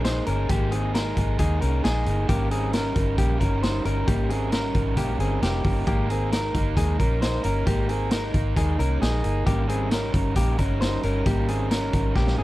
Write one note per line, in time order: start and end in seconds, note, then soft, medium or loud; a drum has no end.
0.00 0.20 A#1 medium
0.00 0.26 G#3 medium
0.04 0.27 A#3 medium
0.04 0.26 D#4 medium
0.04 0.27 D#4 medium
0.04 0.25 G#4 medium
0.04 0.26 C5 medium
0.04 snare loud
0.04 closed hi-hat medium
0.26 0.46 G1 medium
0.26 0.48 A#3 medium
0.26 0.50 C#4 medium
0.26 0.49 D#4 medium
0.26 0.49 G#4 medium
0.26 0.49 A#4 medium
0.26 closed hi-hat medium
0.49 1.13 G#1 loud
0.49 0.72 G#3 medium
0.49 0.72 A#3 medium
0.49 0.72 D#4 medium
0.49 0.72 G4 loud
0.49 0.70 G#4 loud
0.49 kick loud
0.49 closed hi-hat medium
0.71 0.93 A#3 soft
0.71 0.94 C4 medium
0.71 0.95 D#4 medium
0.71 0.94 G#4 medium
0.71 closed hi-hat medium
0.94 1.16 G#3 medium
0.94 1.17 A#3 medium
0.94 1.37 D#4 medium
0.94 1.16 D#4 medium
0.94 1.15 G#4 medium
0.94 1.37 A#4 medium
0.94 snare loud
0.94 closed hi-hat medium
1.16 1.36 G#1 medium
1.16 1.38 A#3 medium
1.16 1.38 D#4 medium
1.16 1.39 G#4 medium
1.16 kick medium
1.16 closed hi-hat medium
1.38 1.58 D#2 loud
1.38 1.61 G#3 medium
1.38 1.61 A#3 medium
1.38 1.61 D#4 loud
1.38 1.62 D#4 medium
1.38 1.61 G#4 medium
1.38 1.60 G#4 medium
1.38 kick medium
1.38 closed hi-hat loud
1.61 1.81 C2 medium
1.61 1.83 A#3 medium
1.61 1.84 C#4 medium
1.61 1.84 D#4 medium
1.61 1.84 G#4 medium
1.61 1.84 A#4 medium
1.61 closed hi-hat medium
1.83 2.03 A#1 medium
1.83 2.06 G#3 medium
1.83 2.06 A#3 medium
1.83 2.06 D#4 medium
1.83 2.27 D#4 medium
1.83 2.26 G#4 medium
1.83 2.05 G#4 medium
1.83 snare loud
1.83 closed hi-hat medium
2.06 2.25 G1 loud
2.06 2.29 A#3 medium
2.06 2.29 D#4 medium
2.06 2.29 G#4 medium
2.06 closed hi-hat medium
2.28 2.93 G#1 loud
2.28 2.51 G#2 medium
2.28 2.51 C#3 medium
2.28 2.52 G3 medium
2.28 2.52 A#3 medium
2.28 2.51 C#4 medium
2.28 2.50 D#4 medium
2.28 2.51 G4 loud
2.28 2.49 A#4 loud
2.28 kick loud
2.28 closed hi-hat medium
2.50 2.72 G3 soft
2.50 2.74 C4 medium
2.50 2.73 C#4 medium
2.50 2.73 D#4 medium
2.50 2.74 G#4 medium
2.50 2.73 A#4 medium
2.50 closed hi-hat medium
2.73 2.96 G3 medium
2.73 2.96 C#4 medium
2.73 3.16 C#4 medium
2.73 2.95 D#4 medium
2.73 3.16 A#4 medium
2.73 2.94 A#4 medium
2.73 snare loud
2.73 closed hi-hat medium
2.95 3.15 G1 medium
2.95 3.17 G3 soft
2.95 3.17 C#4 soft
2.95 3.18 D#4 medium
2.95 3.18 A#4 medium
2.95 kick loud
2.95 closed hi-hat medium
3.17 3.37 A#1 medium
3.17 3.40 G#2 medium
3.17 3.41 C#3 medium
3.17 3.41 G3 medium
3.17 3.41 A#3 medium
3.17 3.40 C#4 medium
3.17 3.40 D#4 medium
3.17 3.40 G4 medium
3.17 3.39 A#4 medium
3.17 kick medium
3.17 closed hi-hat medium
3.40 3.79 G1 medium
3.40 3.61 G3 soft
3.40 3.63 C#4 medium
3.40 3.62 C#4 soft
3.40 3.63 D#4 medium
3.40 3.63 A#4 medium
3.40 kick medium
3.40 closed hi-hat medium
3.62 3.85 G3 medium
3.62 3.85 C#4 medium
3.62 3.86 D#4 medium
3.62 3.85 D#4 medium
3.62 3.84 A#4 medium
3.62 3.85 C5 medium
3.62 snare loud
3.62 closed hi-hat medium
3.85 4.04 G1 medium
3.85 4.07 G3 soft
3.85 4.08 C#4 medium
3.85 4.07 C#4 soft
3.85 4.08 D#4 medium
3.85 4.08 A#4 medium
3.85 closed hi-hat medium
4.07 4.72 G#1 loud
4.07 4.30 G#2 medium
4.07 4.30 C#3 medium
4.07 4.31 G3 loud
4.07 4.30 A#3 medium
4.07 4.30 C#4 medium
4.07 4.29 D#4 loud
4.07 4.30 G4 loud
4.07 4.28 A#4 medium
4.07 kick loud
4.07 closed hi-hat medium
4.29 4.51 G3 soft
4.29 4.53 C4 medium
4.29 4.52 C#4 medium
4.29 4.53 D#4 medium
4.29 4.52 G#4 medium
4.29 4.52 A#4 medium
4.29 closed hi-hat medium
4.52 4.75 G3 medium
4.52 4.75 C#4 medium
4.52 4.95 C#4 medium
4.52 4.74 D#4 medium
4.52 4.95 A#4 medium
4.52 4.73 A#4 medium
4.52 snare loud
4.52 closed hi-hat medium
4.74 4.97 G#1 medium
4.74 4.96 G3 soft
4.74 4.96 C#4 medium
4.74 4.97 D#4 medium
4.74 4.97 A#4 medium
4.74 kick medium
4.74 closed hi-hat medium
4.97 5.16 A#1 medium
4.97 5.20 G#2 medium
4.97 5.20 C#3 medium
4.97 5.20 G3 medium
4.97 5.21 A#3 medium
4.97 5.20 C#4 medium
4.97 5.19 D#4 medium
4.97 5.20 G4 medium
4.97 5.18 A#4 loud
4.97 kick medium
4.97 closed hi-hat medium
5.19 5.38 G1 loud
5.19 5.40 G3 soft
5.19 5.43 C4 medium
5.19 5.41 C#4 medium
5.19 5.42 D#4 medium
5.19 5.42 G#4 medium
5.19 5.42 A#4 medium
5.19 closed hi-hat medium
5.42 5.61 F1 medium
5.42 5.64 G3 medium
5.42 5.85 A#3 medium
5.42 5.64 C#4 medium
5.42 5.63 D#4 medium
5.42 5.85 G4 medium
5.42 5.63 A#4 medium
5.42 snare loud
5.42 closed hi-hat medium
5.64 5.84 G1 medium
5.64 5.86 G3 medium
5.64 5.87 C#4 medium
5.64 5.86 D#4 medium
5.64 5.86 A#4 medium
5.64 kick loud
5.64 open hi-hat medium
5.86 6.51 G#1 loud
5.86 6.09 G#3 medium
5.86 6.10 A#3 medium
5.86 6.09 D#4 medium
5.86 6.10 G4 loud
5.86 6.08 A#4 loud
5.86 kick loud
5.86 closed hi-hat medium
6.09 6.31 A#3 soft
6.09 6.33 C4 medium
6.09 6.32 D#4 soft
6.09 6.32 G#4 medium
6.09 6.32 A#4 medium
6.09 closed hi-hat medium
6.31 6.54 G#3 medium
6.31 6.55 A#3 medium
6.31 6.53 D#4 medium
6.31 6.75 D#4 medium
6.31 6.75 A#4 medium
6.31 6.53 A#4 medium
6.31 snare medium
6.31 closed hi-hat medium
6.54 6.78 G1 medium
6.54 6.75 A#3 medium
6.54 6.75 D#4 medium
6.54 6.76 A#4 medium
6.54 kick loud
6.54 closed hi-hat medium
6.76 6.96 D#2 loud
6.76 6.99 G#3 medium
6.76 6.98 A#3 medium
6.76 6.97 D#4 medium
6.76 7.00 D#4 medium
6.76 6.99 G#4 medium
6.76 6.96 A#4 medium
6.76 kick medium
6.76 closed hi-hat loud
6.98 7.38 A#1 medium
6.98 7.20 A#3 soft
6.98 7.22 C#4 medium
6.98 7.21 D#4 medium
6.98 7.21 A#4 medium
6.98 7.22 A#4 medium
6.98 kick medium
6.98 closed hi-hat medium
7.21 7.44 G#3 medium
7.21 7.44 A#3 medium
7.21 7.43 D#4 medium
7.21 7.45 D#4 medium
7.21 7.42 A#4 medium
7.21 7.44 C5 medium
7.21 snare loud
7.21 closed hi-hat medium
7.43 7.63 G1 medium
7.43 7.65 A#3 soft
7.43 7.67 C#4 medium
7.43 7.66 D#4 medium
7.43 7.66 A#4 medium
7.43 7.67 A#4 medium
7.43 closed hi-hat medium
7.66 8.31 G#1 loud
7.66 7.89 G#3 medium
7.66 7.89 A#3 medium
7.66 7.90 A#3 medium
7.66 7.88 D#4 loud
7.66 7.89 G4 loud
7.66 7.87 A#4 loud
7.66 kick loud
7.66 closed hi-hat medium
7.88 8.10 A#3 soft
7.88 8.12 C4 medium
7.88 8.11 D#4 soft
7.88 8.11 G#4 medium
7.88 8.11 A#4 medium
7.88 closed hi-hat medium
8.10 8.33 G#3 medium
8.10 8.34 A#3 medium
8.10 8.33 D#4 medium
8.10 8.54 D#4 medium
8.10 8.54 A#4 medium
8.10 8.32 A#4 medium
8.10 snare loud
8.10 closed hi-hat medium
8.33 8.53 G#1 loud
8.33 8.55 A#3 medium
8.33 8.55 D#4 medium
8.33 8.56 A#4 medium
8.33 kick loud
8.33 closed hi-hat medium
8.55 8.76 D#2 loud
8.55 8.78 G#3 medium
8.55 8.78 A#3 medium
8.55 8.77 D#4 medium
8.55 8.80 D#4 medium
8.55 8.79 G#4 medium
8.55 8.76 A#4 medium
8.55 kick medium
8.55 closed hi-hat loud
8.77 8.98 C2 medium
8.77 8.99 A#3 soft
8.77 9.02 C#4 medium
8.77 9.00 D#4 medium
8.77 9.01 A#4 medium
8.77 closed hi-hat medium
8.99 9.21 A#1 medium
8.99 9.23 G#3 medium
8.99 9.23 A#3 medium
8.99 9.22 D#4 medium
8.99 9.44 D#4 medium
8.99 9.44 G#4 medium
8.99 9.21 A#4 medium
8.99 snare loud
8.99 closed hi-hat medium
9.22 9.43 G1 loud
9.22 9.45 A#3 medium
9.22 9.45 D#4 medium
9.22 9.45 A#4 medium
9.22 closed hi-hat medium
9.45 10.10 G#1 loud
9.45 9.68 G#2 medium
9.45 9.68 C#3 medium
9.45 9.68 G3 loud
9.45 9.69 A#3 medium
9.45 9.67 C#4 medium
9.45 9.66 D#4 medium
9.45 9.69 G4 loud
9.45 9.65 A#4 medium
9.45 kick loud
9.45 closed hi-hat medium
9.66 9.89 G3 medium
9.66 9.92 C4 medium
9.66 9.89 C#4 medium
9.66 9.90 D#4 medium
9.66 9.91 G#4 medium
9.66 9.90 A#4 medium
9.66 closed hi-hat medium
9.90 10.13 G3 medium
9.90 10.13 C#4 medium
9.90 10.34 C#4 medium
9.90 10.13 D#4 medium
9.90 10.34 A#4 medium
9.90 10.11 A#4 medium
9.90 snare loud
9.90 closed hi-hat medium
10.12 10.33 G1 medium
10.12 10.35 G3 soft
10.12 10.35 C#4 medium
10.12 10.36 D#4 medium
10.12 10.35 A#4 medium
10.12 kick medium
10.12 closed hi-hat medium
10.36 10.55 A#1 medium
10.36 10.58 G#2 medium
10.36 10.58 C#3 medium
10.36 10.59 G3 medium
10.36 10.59 A#3 medium
10.36 10.58 C#4 medium
10.36 10.58 D#4 medium
10.36 10.58 G4 medium
10.36 10.56 A#4 loud
10.36 kick medium
10.36 closed hi-hat loud
10.58 10.97 G1 medium
10.58 10.79 G3 soft
10.58 10.81 C#4 medium
10.58 10.80 C#4 medium
10.58 10.81 D#4 medium
10.58 10.80 A#4 medium
10.58 10.81 A#4 medium
10.58 kick medium
10.58 closed hi-hat medium
10.80 11.03 G3 medium
10.80 11.03 C#4 medium
10.80 11.03 D#4 medium
10.80 11.04 D#4 medium
10.80 11.02 A#4 medium
10.80 11.03 C5 medium
10.80 snare loud
10.80 closed hi-hat medium
11.03 11.23 G1 medium
11.03 11.25 G3 soft
11.03 11.27 C#4 medium
11.03 11.25 C#4 medium
11.03 11.25 D#4 medium
11.03 11.26 A#4 medium
11.03 closed hi-hat medium
11.25 11.90 G#1 loud
11.25 11.48 G#2 medium
11.25 11.48 C#3 medium
11.25 11.49 G3 medium
11.25 11.49 A#3 medium
11.25 11.48 C#4 medium
11.25 11.47 D#4 loud
11.25 11.49 G4 loud
11.25 11.47 A#4 loud
11.25 kick loud
11.25 closed hi-hat medium
11.48 11.69 G3 soft
11.48 11.71 C4 medium
11.48 11.70 C#4 medium
11.48 11.70 D#4 medium
11.48 11.71 G#4 medium
11.48 11.71 A#4 medium
11.48 closed hi-hat medium
11.70 11.93 G3 medium
11.70 11.93 C#4 medium
11.70 12.14 C#4 medium
11.70 11.92 D#4 medium
11.70 12.13 A#4 medium
11.70 11.91 A#4 medium
11.70 snare loud
11.70 closed hi-hat medium
11.92 12.13 G#1 medium
11.92 12.14 G3 medium
11.92 12.15 C#4 medium
11.92 12.15 D#4 medium
11.92 12.15 A#4 medium
11.92 kick loud
11.92 closed hi-hat medium
12.15 12.35 A#1 loud
12.15 12.38 G#2 medium
12.15 12.38 C#3 medium
12.15 12.38 G3 medium
12.15 12.39 A#3 medium
12.15 12.38 C#4 medium
12.15 12.37 D#4 medium
12.15 12.38 G4 medium
12.15 12.36 A#4 medium
12.15 kick medium
12.15 snare medium
12.27 snare medium
12.37 12.43 G1 medium
12.37 12.43 G3 medium
12.37 12.43 C4 medium
12.37 12.43 C#4 soft
12.37 12.43 D#4 soft
12.37 12.43 G#4 medium
12.37 12.43 A#4 medium